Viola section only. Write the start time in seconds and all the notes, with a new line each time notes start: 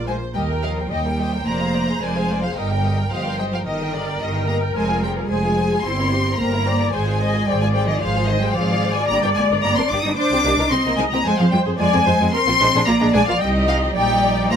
Already playing: A#3 F4
0.35 A#4
0.91 D#5
1.19 C5
2.56 A#4
3.11 C5
3.66 A#4
5.30 G#4
5.84 E4
6.12 G4
6.40 A#4
6.67 D5
6.93 C5
7.21 D#5
7.48 D5
8.02 C5
8.56 D5
10.17 C5
10.44 G4
10.70 D#5
11.24 C5
11.79 D5
12.06 C5
12.33 A#4
12.60 C5
12.87 D5
13.41 D#5
13.95 D5
14.51 C5